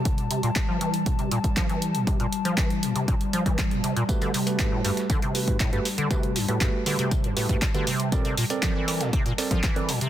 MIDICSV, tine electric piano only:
0, 0, Header, 1, 2, 480
1, 0, Start_track
1, 0, Tempo, 504202
1, 52, Time_signature, 4, 2, 24, 8
1, 9609, End_track
2, 0, Start_track
2, 0, Title_t, "Tine electric piano"
2, 0, Program_c, 0, 4
2, 3891, Note_on_c, 0, 57, 92
2, 3891, Note_on_c, 0, 66, 82
2, 3891, Note_on_c, 0, 67, 79
2, 3891, Note_on_c, 0, 71, 97
2, 4092, Note_off_c, 0, 57, 0
2, 4092, Note_off_c, 0, 66, 0
2, 4092, Note_off_c, 0, 67, 0
2, 4092, Note_off_c, 0, 71, 0
2, 4251, Note_on_c, 0, 57, 87
2, 4251, Note_on_c, 0, 66, 78
2, 4251, Note_on_c, 0, 67, 77
2, 4251, Note_on_c, 0, 71, 97
2, 4583, Note_off_c, 0, 57, 0
2, 4583, Note_off_c, 0, 66, 0
2, 4583, Note_off_c, 0, 67, 0
2, 4583, Note_off_c, 0, 71, 0
2, 4611, Note_on_c, 0, 57, 74
2, 4611, Note_on_c, 0, 66, 65
2, 4611, Note_on_c, 0, 67, 64
2, 4611, Note_on_c, 0, 71, 80
2, 4811, Note_off_c, 0, 67, 0
2, 4812, Note_off_c, 0, 57, 0
2, 4812, Note_off_c, 0, 66, 0
2, 4812, Note_off_c, 0, 71, 0
2, 5091, Note_on_c, 0, 57, 81
2, 5091, Note_on_c, 0, 66, 73
2, 5091, Note_on_c, 0, 67, 74
2, 5091, Note_on_c, 0, 71, 94
2, 5292, Note_off_c, 0, 57, 0
2, 5292, Note_off_c, 0, 66, 0
2, 5292, Note_off_c, 0, 67, 0
2, 5292, Note_off_c, 0, 71, 0
2, 5452, Note_on_c, 0, 57, 84
2, 5452, Note_on_c, 0, 66, 76
2, 5452, Note_on_c, 0, 67, 75
2, 5452, Note_on_c, 0, 71, 92
2, 5577, Note_off_c, 0, 57, 0
2, 5577, Note_off_c, 0, 66, 0
2, 5577, Note_off_c, 0, 67, 0
2, 5577, Note_off_c, 0, 71, 0
2, 5812, Note_on_c, 0, 57, 92
2, 5812, Note_on_c, 0, 67, 83
2, 5812, Note_on_c, 0, 71, 100
2, 5813, Note_on_c, 0, 66, 80
2, 6012, Note_off_c, 0, 57, 0
2, 6012, Note_off_c, 0, 66, 0
2, 6012, Note_off_c, 0, 67, 0
2, 6012, Note_off_c, 0, 71, 0
2, 6173, Note_on_c, 0, 57, 89
2, 6173, Note_on_c, 0, 66, 82
2, 6173, Note_on_c, 0, 67, 80
2, 6173, Note_on_c, 0, 71, 98
2, 6504, Note_off_c, 0, 57, 0
2, 6504, Note_off_c, 0, 66, 0
2, 6504, Note_off_c, 0, 67, 0
2, 6504, Note_off_c, 0, 71, 0
2, 6532, Note_on_c, 0, 57, 71
2, 6532, Note_on_c, 0, 66, 68
2, 6533, Note_on_c, 0, 67, 67
2, 6533, Note_on_c, 0, 71, 82
2, 6732, Note_off_c, 0, 57, 0
2, 6732, Note_off_c, 0, 66, 0
2, 6732, Note_off_c, 0, 67, 0
2, 6732, Note_off_c, 0, 71, 0
2, 7013, Note_on_c, 0, 57, 87
2, 7013, Note_on_c, 0, 66, 78
2, 7013, Note_on_c, 0, 67, 80
2, 7013, Note_on_c, 0, 71, 91
2, 7212, Note_off_c, 0, 57, 0
2, 7212, Note_off_c, 0, 66, 0
2, 7212, Note_off_c, 0, 67, 0
2, 7212, Note_off_c, 0, 71, 0
2, 7372, Note_on_c, 0, 57, 82
2, 7372, Note_on_c, 0, 71, 94
2, 7373, Note_on_c, 0, 66, 78
2, 7373, Note_on_c, 0, 67, 75
2, 7497, Note_off_c, 0, 57, 0
2, 7497, Note_off_c, 0, 66, 0
2, 7497, Note_off_c, 0, 67, 0
2, 7497, Note_off_c, 0, 71, 0
2, 7732, Note_on_c, 0, 60, 89
2, 7732, Note_on_c, 0, 69, 80
2, 7732, Note_on_c, 0, 70, 83
2, 7732, Note_on_c, 0, 74, 102
2, 7932, Note_off_c, 0, 60, 0
2, 7932, Note_off_c, 0, 69, 0
2, 7932, Note_off_c, 0, 70, 0
2, 7932, Note_off_c, 0, 74, 0
2, 8093, Note_on_c, 0, 60, 89
2, 8093, Note_on_c, 0, 69, 83
2, 8093, Note_on_c, 0, 70, 79
2, 8093, Note_on_c, 0, 74, 101
2, 8424, Note_off_c, 0, 60, 0
2, 8424, Note_off_c, 0, 69, 0
2, 8424, Note_off_c, 0, 70, 0
2, 8424, Note_off_c, 0, 74, 0
2, 8451, Note_on_c, 0, 69, 68
2, 8451, Note_on_c, 0, 70, 71
2, 8451, Note_on_c, 0, 74, 80
2, 8452, Note_on_c, 0, 60, 72
2, 8652, Note_off_c, 0, 60, 0
2, 8652, Note_off_c, 0, 69, 0
2, 8652, Note_off_c, 0, 70, 0
2, 8652, Note_off_c, 0, 74, 0
2, 8932, Note_on_c, 0, 60, 85
2, 8932, Note_on_c, 0, 70, 76
2, 8933, Note_on_c, 0, 69, 79
2, 8933, Note_on_c, 0, 74, 93
2, 9132, Note_off_c, 0, 60, 0
2, 9132, Note_off_c, 0, 69, 0
2, 9132, Note_off_c, 0, 70, 0
2, 9132, Note_off_c, 0, 74, 0
2, 9292, Note_on_c, 0, 60, 81
2, 9292, Note_on_c, 0, 69, 73
2, 9292, Note_on_c, 0, 70, 77
2, 9292, Note_on_c, 0, 74, 96
2, 9417, Note_off_c, 0, 60, 0
2, 9417, Note_off_c, 0, 69, 0
2, 9417, Note_off_c, 0, 70, 0
2, 9417, Note_off_c, 0, 74, 0
2, 9609, End_track
0, 0, End_of_file